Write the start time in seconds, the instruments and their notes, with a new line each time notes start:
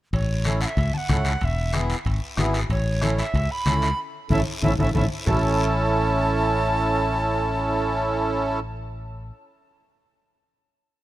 0.13 fingered electric bass A1, recorder C#5, bombo low, high timbale, long guiro
0.45 accordion C#4 E4 A4, bombo rim, high conga, high timbale, short guiro
0.61 recorder F#5, high timbale, short guiro
0.66 recorder E5
0.77 fingered electric bass C#2, bombo low, high timbale, long guiro
0.94 recorder F#5 A5, high conga
1.09 fingered electric bass C#2, accordion C#4 E4 A4, bombo low, bombo rim, high conga, high timbale, short guiro
1.25 bombo rim, high timbale, short guiro
1.41 fingered electric bass E1, recorder E5 F#5, bombo low, high timbale, long guiro
1.73 accordion B3 E4 G#4, bombo rim, high conga, high timbale, short guiro
1.90 high timbale, short guiro
2.05 fingered electric bass G#1, bombo low, high timbale, long guiro
2.37 fingered electric bass G#1, accordion B3 E4 G#4, bombo rim, high conga, high timbale, low timbale, short guiro
2.53 bombo rim, high timbale, short guiro
2.69 fingered electric bass A1, recorder C#5, bombo low, high timbale, long guiro
3.01 accordion C#4 E4 A4, bombo rim, high conga, high timbale, short guiro
3.18 recorder E5, high timbale, short guiro
3.34 fingered electric bass C#2, bombo low, high timbale, long guiro
3.51 recorder B5
3.66 fingered electric bass C#2, accordion C#4 E4 A4, bombo rim, high conga, high timbale, short guiro
3.82 bombo rim, high timbale, short guiro
4.29 fingered electric bass A1, accordion C#4 E4 A4, recorder E5, bombo low, high conga, high timbale, long guiro
4.62 fingered electric bass A1, accordion C#4 E4 A4, recorder E5, bombo low, high conga, high timbale, long guiro
4.78 fingered electric bass A1, accordion C#4 E4 A4, recorder E5, bombo low, high conga, high timbale, long guiro
4.95 fingered electric bass A1, accordion C#4 E4 A4, recorder E5, bombo low, high conga, high timbale, long guiro
5.26 fingered electric bass A1, accordion C#4 E4 A4, recorder A5, bombo low, low conga, low timbale, long guiro